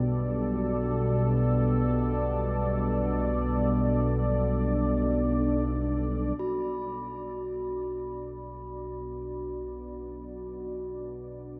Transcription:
0.00 6.37 B1 medium
0.00 6.37 B2 medium
0.00 6.39 B2 medium
0.00 6.38 G3 medium
0.00 11.60 D4 medium
0.00 9.42 A4 medium
0.00 11.60 D5 medium
6.39 11.60 B1 medium
6.39 11.60 B2 medium
6.39 11.60 B3 medium
6.39 11.60 F#4 medium
7.70 11.60 F#4 medium

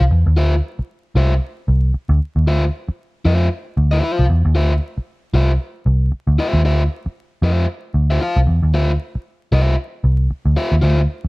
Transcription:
0.01 0.10 C2 medium
0.11 0.24 E2 medium
0.26 0.37 D#2 medium
0.37 0.60 D2 loud
0.37 0.53 F4 medium
0.37 0.53 C5 medium
0.37 0.53 E5 medium
0.79 muted picked electric bass stroke soft
1.15 1.38 C2 medium
1.15 1.32 F4 medium
1.15 1.32 C5 medium
1.15 1.33 E5 medium
1.68 1.91 C2 medium
1.94 muted picked electric bass stroke soft
2.09 2.18 D2 loud
2.36 2.46 D#2 medium
2.46 2.69 D2 loud
2.46 2.63 F4 medium
2.46 2.63 C5 medium
2.46 2.63 E5 loud
2.88 muted picked electric bass stroke soft
3.25 3.48 F2 medium
3.25 3.46 F4 medium
3.25 3.47 C5 medium
3.25 3.47 E5 medium
3.77 4.00 D2 medium
3.91 4.02 F4 medium
3.91 4.02 C5 medium
3.91 4.04 E5 medium
4.03 4.24 F4 medium
4.03 4.24 C5 medium
4.03 4.25 F5 medium
4.19 4.28 C2 medium
4.30 4.43 E2 medium
4.45 4.56 D#2 medium
4.55 4.78 D2 loud
4.55 4.71 F4 medium
4.55 4.72 C5 medium
4.55 4.72 E5 medium
4.98 muted picked electric bass stroke soft
5.34 5.56 C2 medium
5.34 5.50 F4 medium
5.34 5.50 C5 medium
5.34 5.51 E5 medium
5.86 6.09 C2 medium
6.12 muted picked electric bass stroke soft
6.27 6.37 D2 medium
6.38 6.60 F4 medium
6.38 6.60 C5 medium
6.38 6.60 E5 loud
6.53 6.64 D#2 loud
6.64 6.87 D2 loud
6.64 6.81 F4 medium
6.64 6.81 C5 medium
6.64 6.81 E5 loud
7.06 muted picked electric bass stroke soft
7.42 7.65 F2 medium
7.42 7.64 F4 medium
7.42 7.65 C5 medium
7.42 7.65 E5 medium
7.94 8.17 D2 medium
8.10 8.20 F4 medium
8.10 8.21 C5 medium
8.10 8.22 E5 medium
8.21 8.37 F4 medium
8.21 8.38 C5 medium
8.21 8.38 F5 loud
8.36 8.46 C2 loud
8.47 8.61 E2 medium
8.62 8.73 D#2 medium
8.73 8.96 D2 loud
8.73 8.90 F4 medium
8.73 8.90 C5 medium
8.73 8.90 E5 loud
9.15 muted picked electric bass stroke soft
9.52 9.75 C2 medium
9.52 9.73 F4 medium
9.52 9.74 C5 medium
9.52 9.74 E5 medium
10.04 10.27 C2 medium
10.31 muted picked electric bass stroke soft
10.45 10.55 D2 medium
10.57 10.73 F4 medium
10.57 10.73 C5 medium
10.57 10.73 E5 loud
10.72 10.81 D#2 medium
10.82 11.05 D2 medium
10.82 10.98 F4 medium
10.82 10.99 C5 loud
10.82 10.99 E5 medium
11.25 muted picked electric bass stroke soft

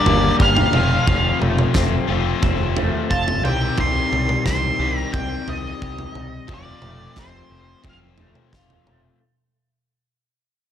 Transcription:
0.00 0.72 G2 medium
0.00 0.72 D3 medium
0.00 0.73 G3 medium
0.00 0.74 G3 medium
0.00 0.73 A#3 medium
0.00 0.73 D4 medium
0.00 0.74 D4 medium
0.00 0.73 G4 medium
0.00 0.35 D5 medium
0.06 0.30 G1 medium
0.06 0.74 A#3 medium
0.06 floor tom medium
0.39 0.64 G1 medium
0.39 0.73 G4 medium
0.39 1.39 F5 medium
0.39 kick loud
0.57 floor tom medium
0.73 0.98 F1 medium
0.73 1.05 F2 medium
0.73 2.07 F3 medium
0.73 2.08 A3 medium
0.73 2.09 C4 medium
0.73 2.06 F4 loud
0.73 mid tom medium
1.07 1.31 F1 medium
1.07 2.76 F2 medium
1.07 kick loud
1.07 floor tom medium
1.41 1.65 F1 medium
1.41 2.75 A3 medium
1.41 mid tom medium
1.59 mid tom medium
1.74 1.98 F1 medium
1.74 2.41 C4 medium
1.74 kick loud
1.74 snare medium
1.74 floor tom medium
2.07 2.32 F1 medium
2.07 3.43 F3 medium
2.07 3.43 A3 medium
2.07 3.46 C4 medium
2.07 3.42 F4 medium
2.11 3.43 F3 medium
2.41 2.90 F1 medium
2.41 4.45 C4 medium
2.41 kick loud
2.41 floor tom medium
2.76 3.44 A3 medium
2.76 floor tom medium
3.10 3.44 F1 medium
3.10 3.45 F4 medium
3.10 3.42 A5 medium
3.10 kick medium
3.28 floor tom medium
3.44 3.68 C2 medium
3.44 4.78 C3 medium
3.44 3.77 C3 medium
3.44 4.78 D#3 medium
3.44 4.79 G3 medium
3.44 4.80 C4 medium
3.44 4.78 G4 medium
3.44 3.76 G5 medium
3.44 mid tom medium
3.78 4.02 C2 medium
3.78 5.48 C3 medium
3.78 4.43 C6 loud
3.78 kick loud
3.78 floor tom medium
4.11 4.36 C2 medium
4.11 5.47 G3 medium
4.11 mid tom medium
4.29 mid tom medium
4.45 4.69 C2 medium
4.45 5.14 C4 medium
4.45 4.99 C6 medium
4.45 kick medium
4.45 snare medium
4.45 floor tom medium
4.79 5.03 C2 medium
4.79 6.15 C3 medium
4.79 6.49 D#3 medium
4.79 6.15 D#3 medium
4.79 6.14 G3 medium
4.79 6.50 C4 medium
4.79 6.13 G4 medium
4.99 5.16 A#5 medium
5.13 5.37 C2 medium
5.13 7.17 C4 medium
5.13 5.48 G5 medium
5.13 kick loud
5.13 floor tom medium
5.48 5.71 C2 medium
5.48 6.16 G3 medium
5.48 6.53 D#5 medium
5.48 floor tom medium
5.82 6.06 C2 medium
5.82 6.50 G4 medium
5.82 kick medium
5.98 floor tom medium
6.15 6.39 C2 medium
6.15 6.50 G3 medium
6.15 mid tom medium
6.48 6.73 F1 medium
6.48 8.19 F2 medium
6.48 7.81 F3 medium
6.48 7.83 A3 medium
6.48 7.83 C4 medium
6.48 7.84 F4 medium
6.48 kick loud
6.48 floor tom medium
6.54 7.22 D5 medium
6.82 7.06 F1 medium
6.82 8.18 A3 medium
6.82 mid tom medium
7.16 7.41 F1 medium
7.16 7.84 C4 medium
7.16 7.82 C5 medium
7.16 kick loud
7.16 snare medium
7.16 floor tom medium
7.50 7.74 F1 medium
7.50 9.21 F3 medium
7.83 8.32 F1 medium
7.83 9.18 F3 medium
7.83 9.18 A3 medium
7.83 9.19 C4 medium
7.83 9.21 C4 medium
7.83 9.19 F4 medium
7.83 kick loud
7.83 floor tom medium
7.90 7.98 F5 medium
8.18 8.87 A3 medium
8.18 floor tom medium
8.35 mid tom medium
8.53 8.77 F1 medium
8.53 9.22 F4 medium
8.53 kick medium
8.53 snare medium
8.70 floor tom medium
8.86 9.10 F1 medium
8.86 9.22 A3 medium
8.86 mid tom medium

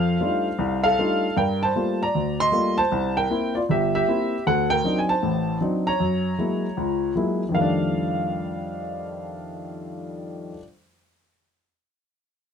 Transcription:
0.00 0.16 F2 medium
0.00 0.84 A4 medium
0.00 0.95 C5 medium
0.00 0.82 F5 medium
0.21 0.47 G3 medium
0.21 0.47 A3 soft
0.21 0.48 D4 medium
0.21 0.47 D#4 soft
0.21 0.47 F4 medium
0.59 0.92 C2 medium
0.84 1.33 A4 medium
0.84 1.37 F5 loud
0.99 1.25 G3 medium
0.99 1.25 A3 medium
0.99 1.25 D4 medium
0.99 1.25 D#4 medium
0.99 1.25 F4 medium
1.37 1.70 G2 medium
1.37 1.61 A#4 medium
1.37 1.63 G5 medium
1.63 1.99 C5 medium
1.63 2.02 A5 medium
1.76 2.02 G3 medium
1.76 2.02 A3 soft
1.76 2.02 A#3 soft
1.76 2.02 F4 medium
2.03 2.38 D5 medium
2.03 2.41 A#5 medium
2.15 2.48 D2 medium
2.40 2.76 D#5 medium
2.40 2.75 C6 loud
2.52 2.79 G3 medium
2.52 2.79 A3 soft
2.52 2.79 A#3 medium
2.52 2.79 F4 medium
2.78 3.14 C5 medium
2.78 3.17 A5 loud
2.92 3.25 C2 medium
3.17 3.53 A#4 medium
3.17 3.52 G5 medium
3.30 3.56 A#3 medium
3.30 3.57 C4 soft
3.30 3.57 E4 medium
3.55 3.61 F4 medium
3.55 3.60 D5 medium
3.69 4.02 G1 medium
3.69 3.93 G4 medium
3.69 3.94 E5 medium
3.95 4.43 G4 medium
3.95 4.42 E5 medium
4.08 4.34 A#3 medium
4.08 4.34 C4 soft
4.08 4.34 E4 medium
4.47 4.79 D2 medium
4.47 4.70 A4 medium
4.47 4.72 F#5 medium
4.70 4.99 A#4 medium
4.70 4.98 G5 loud
4.84 5.11 F#3 soft
4.84 5.11 C4 medium
4.84 5.11 D4 medium
4.84 5.11 D#4 medium
4.99 5.08 G#5 medium
5.09 5.58 C5 medium
5.09 5.57 A5 medium
5.23 5.56 A1 medium
5.23 5.56 A2 medium
5.61 5.87 F#3 medium
5.61 5.87 C4 soft
5.61 5.88 D4 medium
5.61 5.88 D#4 medium
5.87 7.12 C#5 medium
5.87 7.11 A#5 medium
6.00 6.33 F#2 medium
6.39 6.65 F#3 soft
6.39 6.65 G#3 soft
6.39 6.65 A#3 soft
6.39 6.65 E4 medium
6.77 7.10 C#2 medium
7.15 7.42 F#3 medium
7.15 7.42 G#3 soft
7.15 7.42 A#3 soft
7.15 7.43 E4 medium
7.49 10.50 F2 medium
7.49 10.53 D#3 medium
7.55 10.55 G3 medium
7.55 10.58 A3 medium
7.55 10.51 F5 medium
7.61 10.62 D4 medium

